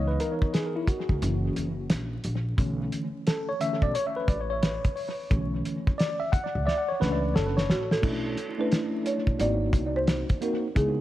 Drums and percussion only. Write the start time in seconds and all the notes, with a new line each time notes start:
0.20 closed hi-hat
0.42 kick
0.54 snare, closed hi-hat
0.88 kick, closed hi-hat
1.09 kick
1.22 closed hi-hat
1.56 closed hi-hat
1.90 snare, closed hi-hat
2.24 closed hi-hat
2.58 kick, closed hi-hat
2.92 closed hi-hat
3.27 snare, closed hi-hat
3.61 closed hi-hat
3.82 kick
3.95 closed hi-hat
4.28 kick, closed hi-hat
4.63 snare, closed hi-hat
4.84 kick, closed hi-hat
4.97 open hi-hat
5.31 kick, closed hi-hat
5.65 closed hi-hat
5.87 kick
6.00 snare, closed hi-hat
6.33 kick, closed hi-hat
6.68 snare
7.02 snare
7.36 snare
7.58 snare
7.70 snare
7.91 snare
8.03 kick, crash
8.37 closed hi-hat
8.72 snare, closed hi-hat
9.06 closed hi-hat
9.27 kick
9.40 closed hi-hat
9.73 kick, closed hi-hat
10.07 snare, closed hi-hat
10.29 kick, closed hi-hat
10.42 closed hi-hat
10.76 kick, closed hi-hat